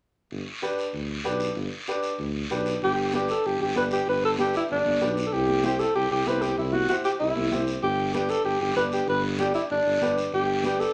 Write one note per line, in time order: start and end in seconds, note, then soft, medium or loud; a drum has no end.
0.31 0.43 G1 medium
0.31 long guiro medium
0.62 0.84 D4 medium
0.62 0.84 G4 medium
0.62 0.84 B4 medium
0.62 short guiro medium
0.78 short guiro medium
0.93 1.18 D2 medium
0.93 long guiro medium
1.24 1.50 B1 medium
1.24 1.46 D4 medium
1.24 1.47 G4 medium
1.24 1.47 B4 medium
1.24 short guiro medium
1.40 short guiro medium
1.55 1.68 G1 medium
1.55 long guiro medium
1.87 2.10 D4 medium
1.87 2.10 G4 medium
1.87 2.10 B4 medium
1.87 short guiro medium
2.03 short guiro medium
2.19 2.44 D2 medium
2.19 long guiro medium
2.50 2.75 B1 medium
2.50 2.72 D4 medium
2.50 2.73 G4 medium
2.50 2.73 B4 medium
2.50 short guiro medium
2.66 short guiro medium
2.81 3.32 G1 loud
2.81 3.12 G4 medium
2.81 high conga soft
2.81 long guiro medium
3.13 3.35 D4 medium
3.13 3.35 G4 medium
3.13 3.29 G4 medium
3.13 3.35 B4 medium
3.13 high conga medium
3.13 short guiro medium
3.28 3.48 A4 medium
3.28 short guiro medium
3.44 3.57 G1 medium
3.44 3.61 G4 medium
3.44 high conga soft
3.44 long guiro medium
3.60 3.72 G1 medium
3.60 3.75 G4 medium
3.60 high conga medium
3.75 4.01 G1 medium
3.75 3.97 D4 medium
3.75 3.98 G4 medium
3.75 3.98 B4 medium
3.75 3.84 B4 medium
3.75 high conga medium
3.75 short guiro medium
3.91 4.07 G4 medium
3.91 short guiro medium
4.07 4.57 G1 loud
4.07 4.23 B4 loud
4.07 high conga soft
4.07 long guiro medium
4.25 4.31 A4 medium
4.38 4.60 D4 medium
4.38 4.60 G4 medium
4.38 4.54 G4 medium
4.38 4.61 B4 medium
4.38 high conga medium
4.38 short guiro medium
4.54 4.63 E4 medium
4.54 short guiro medium
4.69 4.82 G1 medium
4.69 5.14 D4 medium
4.69 high conga soft
4.69 long guiro medium
4.85 4.98 G1 medium
4.85 high conga medium
5.01 5.26 B1 medium
5.01 5.23 D4 medium
5.01 5.23 G4 medium
5.01 5.23 B4 medium
5.01 high conga medium
5.01 short guiro medium
5.17 short guiro medium
5.26 5.34 A4 medium
5.32 5.83 C2 loud
5.32 5.64 G4 medium
5.32 high conga soft
5.32 long guiro medium
5.48 high conga medium
5.64 5.86 E4 medium
5.64 5.86 G4 medium
5.64 5.81 G4 medium
5.64 5.86 C5 medium
5.64 high conga medium
5.64 short guiro medium
5.79 5.95 A4 medium
5.79 short guiro medium
5.95 6.07 C2 medium
5.95 6.10 G4 medium
5.95 high conga soft
5.95 long guiro medium
6.11 6.23 C2 medium
6.11 6.29 G4 medium
6.26 6.52 C2 medium
6.26 6.48 E4 medium
6.26 6.48 G4 medium
6.26 6.43 B4 medium
6.26 6.49 C5 medium
6.26 high conga medium
6.26 short guiro medium
6.42 6.57 G4 medium
6.42 short guiro medium
6.57 6.86 C2 loud
6.57 6.75 E4 medium
6.57 high conga soft
6.57 long guiro medium
6.73 6.89 F#4 medium
6.73 high conga medium
6.89 7.11 E4 medium
6.89 6.96 F#4 medium
6.89 7.11 G4 medium
6.89 7.11 C5 medium
6.89 high conga medium
6.89 short guiro medium
7.04 7.12 G4 medium
7.04 short guiro medium
7.20 7.33 C2 medium
7.20 7.63 E4 medium
7.20 high conga soft
7.20 long guiro medium
7.35 7.48 C2 medium
7.35 high conga medium
7.51 7.76 C2 medium
7.51 7.73 E4 medium
7.51 7.74 G4 medium
7.51 7.74 C5 medium
7.51 high conga medium
7.51 short guiro medium
7.67 short guiro medium
7.82 8.33 G1 loud
7.82 8.12 G4 medium
7.82 high conga soft
7.82 long guiro medium
8.13 8.36 D4 medium
8.13 8.36 G4 medium
8.13 8.31 G4 medium
8.13 8.36 B4 medium
8.13 high conga medium
8.13 short guiro medium
8.29 8.45 A4 medium
8.29 short guiro medium
8.44 8.57 G1 medium
8.44 8.60 G4 medium
8.44 high conga soft
8.44 long guiro medium
8.60 8.73 G1 medium
8.60 8.76 G4 medium
8.76 9.01 G1 medium
8.76 8.98 D4 medium
8.76 8.99 G4 medium
8.76 8.83 B4 medium
8.76 8.99 B4 medium
8.76 high conga medium
8.76 short guiro medium
8.92 9.07 G4 medium
8.92 short guiro medium
9.07 9.57 G1 loud
9.07 9.23 B4 medium
9.07 high conga soft
9.07 long guiro medium
9.38 9.61 D4 medium
9.38 9.54 G4 medium
9.38 9.61 G4 medium
9.38 9.61 D5 medium
9.38 high conga medium
9.38 short guiro medium
9.54 9.62 E4 medium
9.54 short guiro medium
9.70 9.82 G1 medium
9.70 10.14 D4 medium
9.70 high conga soft
9.70 long guiro medium
9.85 9.98 G1 medium
10.01 10.26 G1 medium
10.01 10.23 D4 medium
10.01 10.24 G4 medium
10.01 10.24 B4 medium
10.01 high conga medium
10.01 short guiro medium
10.18 short guiro medium
10.32 10.82 G1 loud
10.32 10.62 G4 medium
10.32 high conga soft
10.32 long guiro medium
10.64 10.86 D4 medium
10.64 10.86 G4 medium
10.64 10.82 G4 medium
10.64 10.87 B4 medium
10.64 high conga medium
10.64 short guiro medium
10.80 10.93 A4 medium
10.80 short guiro medium